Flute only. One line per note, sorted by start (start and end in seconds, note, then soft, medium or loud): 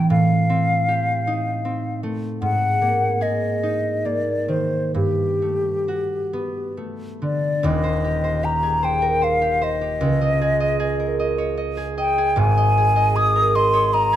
0.10 2.00 F5 medium
2.42 3.24 F#5 medium
3.22 4.08 D#5 medium
4.06 4.51 D5 medium
4.50 4.95 C5 soft
4.96 6.74 G4 soft
7.23 7.68 D5 soft
7.66 8.46 D#5 medium
8.45 8.86 A#5 medium
8.84 9.25 G5 medium
9.24 9.65 F5 medium
9.64 11.60 D#5 medium
11.99 12.41 G5 medium
12.39 13.18 G#5 medium
13.16 13.57 D#6 medium
13.55 13.95 C6 medium
13.94 14.16 A#5 medium